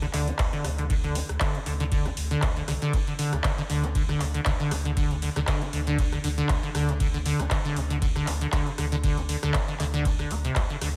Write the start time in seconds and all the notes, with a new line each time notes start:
0.02 D3, cross-stick, closed hi-hat
0.13 D2 D3, clap, open hi-hat
0.28 F4, closed hi-hat
0.38 D2, kick, clap, closed hi-hat, ride
0.53 D3, closed hi-hat
0.64 D2 C3, cross-stick, open hi-hat
0.78 D3, closed hi-hat
0.90 D3, kick, closed hi-hat, ride
1.04 D3, closed hi-hat
1.15 F4, open hi-hat
1.29 D2, cross-stick, closed hi-hat
1.40 D3, kick, clap, closed hi-hat, ride
1.55 C3, closed hi-hat
1.66 D2 D3, open hi-hat
1.80 D3, closed hi-hat
1.92 D3, kick, closed hi-hat, ride
2.06 F4, cross-stick, closed hi-hat
2.17 D2, open hi-hat
2.31 D3, closed hi-hat
2.42 D2 C3, kick, clap, closed hi-hat, ride
2.56 D3, closed hi-hat
2.68 C2 D3, cross-stick, open hi-hat
2.82 D3, closed hi-hat
2.93 F4, kick, closed hi-hat, ride
3.07 D3, closed hi-hat
3.19 D3, open hi-hat
3.33 D2 C3, cross-stick, closed hi-hat
3.44 D3, kick, clap, closed hi-hat, ride
3.58 D3, closed hi-hat
3.70 D2 D3, open hi-hat
3.84 F4, closed hi-hat
3.95 D3, kick, closed hi-hat, ride
4.09 D3, cross-stick, closed hi-hat
4.20 D2 C3, clap, open hi-hat
4.34 D3, closed hi-hat
4.45 D2 D3, kick, clap, closed hi-hat, ride
4.60 D3, closed hi-hat
4.71 D2 F4, cross-stick, open hi-hat
4.85 D3, closed hi-hat
4.97 D3, kick, closed hi-hat, ride
5.11 C3, closed hi-hat
5.22 D3, open hi-hat
5.36 D2 D3, cross-stick, closed hi-hat
5.47 D3, kick, clap, closed hi-hat, ride
5.62 F4, closed hi-hat
5.73 D2 D3, open hi-hat
5.87 D3, closed hi-hat
5.98 C3, kick, closed hi-hat, ride
6.12 D3, cross-stick, closed hi-hat
6.24 D2 D3, open hi-hat
6.38 D3, closed hi-hat
6.49 D2 F4, kick, clap, closed hi-hat, ride
6.63 D3, closed hi-hat
6.75 D2 D3, cross-stick, open hi-hat
6.89 C3, closed hi-hat
7.00 D3, kick, closed hi-hat, ride
7.14 D3, closed hi-hat
7.26 D3, open hi-hat
7.39 D2 F4, cross-stick, closed hi-hat
7.50 D3, kick, clap, closed hi-hat, ride
7.65 D3, closed hi-hat
7.76 D2 C3, open hi-hat
7.90 D3, closed hi-hat
8.02 D3, kick, closed hi-hat, ride
8.16 D3, cross-stick, closed hi-hat
8.27 D2 F4, clap, open hi-hat
8.41 D3, closed hi-hat
8.52 D2 D3, kick, clap, closed hi-hat, ride
8.67 C3, closed hi-hat
8.78 D2 D3, cross-stick, open hi-hat
8.92 D3, closed hi-hat
9.04 D3, kick, closed hi-hat, ride
9.17 F4, closed hi-hat
9.29 D3, open hi-hat
9.43 D2 D3, cross-stick, closed hi-hat
9.54 C3, kick, clap, closed hi-hat, ride
9.68 D3, closed hi-hat
9.79 D2 D3, clap, open hi-hat
9.94 D3, closed hi-hat
10.05 F4, kick, closed hi-hat, ride
10.19 D3, cross-stick, closed hi-hat
10.31 D2 C4, open hi-hat
10.44 C3, closed hi-hat
10.55 D2 A3, kick, clap, closed hi-hat, ride
10.70 D3, closed hi-hat
10.81 D2 D3, cross-stick, open hi-hat